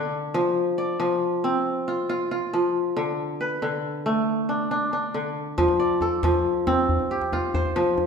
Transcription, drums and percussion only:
5.58 djembe slap soft
5.58 djembe bass medium
5.68 djembe slap soft
5.68 djembe tone soft
6.01 djembe tone medium
6.23 djembe slap medium
6.23 djembe bass medium
6.34 djembe tone soft
6.67 djembe slap medium
6.67 djembe tone medium
6.89 djembe bass medium
6.99 djembe tone medium
7.21 djembe slap soft
7.33 djembe tone medium
7.54 djembe bass medium
7.65 djembe tone soft
7.76 djembe slap medium
7.98 djembe tone medium

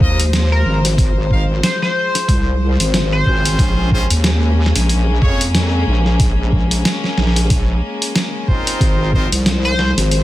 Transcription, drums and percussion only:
0.00 kick loud
0.20 closed hi-hat medium
0.33 snare loud
0.33 closed hi-hat medium
0.85 snare soft
0.85 closed hi-hat medium
0.98 kick loud
0.98 closed hi-hat medium
1.31 kick medium
1.63 snare loud
1.63 closed hi-hat medium
1.82 snare soft
2.15 snare soft
2.15 closed hi-hat medium
2.28 kick loud
2.28 closed hi-hat medium
2.80 closed hi-hat medium
2.94 snare loud
2.94 closed hi-hat medium
3.26 kick medium
3.45 closed hi-hat medium
3.59 kick loud
3.59 closed hi-hat medium
3.91 kick medium
4.10 closed hi-hat medium
4.24 snare loud
4.24 closed hi-hat medium
4.66 snare medium
4.76 snare soft
4.76 closed hi-hat medium
4.89 closed hi-hat medium
5.22 kick loud
5.41 closed hi-hat medium
5.55 snare loud
5.55 closed hi-hat medium
6.06 snare soft
6.20 kick loud
6.20 closed hi-hat medium
6.52 kick medium
6.71 closed hi-hat medium
6.85 snare loud
6.85 closed hi-hat medium
7.04 snare soft
7.18 snare soft
7.22 snare soft
7.27 snare soft
7.32 snare soft
7.36 snare soft
7.36 closed hi-hat medium
7.40 snare soft
7.43 snare soft
7.46 snare soft
7.50 kick loud
7.50 closed hi-hat medium
7.56 snare soft
8.02 closed hi-hat medium
8.16 snare loud
8.16 closed hi-hat medium
8.48 kick medium
8.67 closed hi-hat medium
8.81 kick loud
8.81 closed hi-hat medium
9.13 kick medium
9.32 closed hi-hat medium
9.46 snare loud
9.46 closed hi-hat soft
9.79 snare medium
9.98 snare soft
9.98 closed hi-hat medium
10.11 closed hi-hat soft

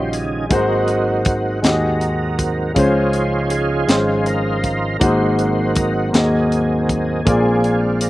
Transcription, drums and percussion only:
0.13 closed hi-hat medium
0.51 kick medium
0.51 closed hi-hat medium
0.88 closed hi-hat soft
1.25 kick medium
1.25 closed hi-hat medium
1.64 snare medium
1.64 closed hi-hat medium
2.01 closed hi-hat soft
2.39 kick medium
2.39 closed hi-hat medium
2.76 kick medium
2.76 closed hi-hat medium
3.13 closed hi-hat soft
3.50 closed hi-hat medium
3.89 snare medium
3.89 closed hi-hat medium
4.26 closed hi-hat soft
4.64 kick medium
4.64 closed hi-hat medium
5.01 kick medium
5.01 closed hi-hat medium
5.39 closed hi-hat soft
5.76 kick medium
5.76 closed hi-hat medium
6.14 snare medium
6.14 closed hi-hat medium
6.52 closed hi-hat soft
6.89 kick medium
6.89 closed hi-hat medium
7.27 kick loud
7.27 closed hi-hat medium
7.64 closed hi-hat soft
8.01 closed hi-hat medium

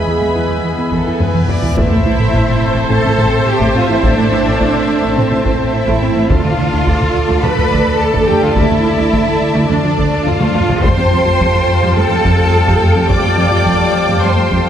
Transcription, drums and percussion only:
0.93 taiko medium
1.20 taiko low-mid medium
1.35 taiko mid medium
1.49 taiko low-mid medium
1.63 taiko low medium
1.77 taiko loud
1.91 taiko mid soft
2.05 taiko mid medium
2.33 taiko medium
2.48 taiko mid soft
2.90 taiko mid medium
3.05 taiko mid soft
3.19 taiko medium
3.61 taiko medium
4.04 taiko medium
4.18 taiko mid soft
4.32 taiko mid medium
4.61 taiko medium
4.75 taiko mid soft
5.17 taiko mid medium
5.32 taiko mid soft
5.45 taiko medium
5.88 taiko medium
6.30 taiko loud
6.44 taiko mid soft
6.58 taiko mid medium
6.87 taiko medium
7.01 taiko mid soft
7.43 taiko mid medium
7.58 taiko mid soft
7.71 taiko medium
8.14 taiko medium
8.56 taiko loud
9.13 taiko medium
9.98 taiko medium
10.27 taiko low-mid medium
10.41 taiko high medium
10.55 taiko low-mid medium
10.69 taiko low loud
10.84 taiko loud
11.40 taiko medium
12.25 taiko medium
12.67 taiko medium
13.10 taiko medium
13.66 taiko medium
14.51 taiko medium

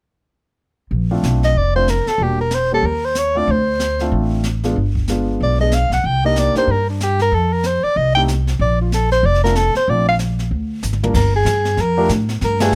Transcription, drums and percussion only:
0.91 brush sweep soft
1.23 snare soft
1.23 hi-hat pedal soft
1.43 snare soft
1.55 brush sweep soft
1.88 snare soft
1.88 hi-hat pedal soft
2.07 snare soft
2.19 brush sweep soft
2.51 snare soft
2.51 hi-hat pedal soft
2.83 brush sweep soft
3.15 snare soft
3.15 hi-hat pedal soft
3.48 brush sweep soft
3.80 snare soft
3.80 hi-hat pedal soft
3.99 snare soft
4.12 brush sweep soft
4.44 snare soft
4.44 hi-hat pedal soft
4.64 snare soft
4.76 brush sweep soft
4.95 kick soft
5.08 snare soft
5.08 hi-hat pedal soft
5.41 brush sweep soft
5.72 snare soft
5.72 hi-hat pedal soft
5.92 snare soft
6.04 brush sweep soft
6.36 snare soft
6.36 hi-hat pedal soft
6.55 snare soft
6.68 brush sweep soft
7.00 snare soft
7.00 hi-hat pedal medium
7.19 snare soft
7.32 brush sweep soft
7.63 snare soft
7.63 hi-hat pedal soft
7.96 brush sweep soft
8.28 snare soft
8.28 hi-hat pedal medium
8.47 snare soft
8.60 brush sweep soft
8.92 snare soft
8.92 hi-hat pedal soft
9.11 snare soft
9.24 brush sweep soft
9.34 snare soft
9.45 snare soft
9.55 snare soft
9.55 hi-hat pedal soft
9.75 snare soft
9.88 brush sweep soft
10.19 snare soft
10.19 hi-hat pedal soft
10.39 snare soft
10.51 brush sweep soft
10.83 hi-hat pedal medium
10.83 high tom soft
10.93 mid tom soft
11.03 mid tom medium
11.14 brush sweep soft
11.14 kick medium
11.14 snare soft
11.14 crash medium
11.46 snare medium
11.46 hi-hat pedal medium
11.65 snare soft
11.77 brush sweep soft
11.77 snare soft
12.09 snare medium
12.09 hi-hat pedal soft
12.29 snare soft
12.41 brush sweep soft
12.41 snare soft
12.60 snare medium
12.60 ride medium

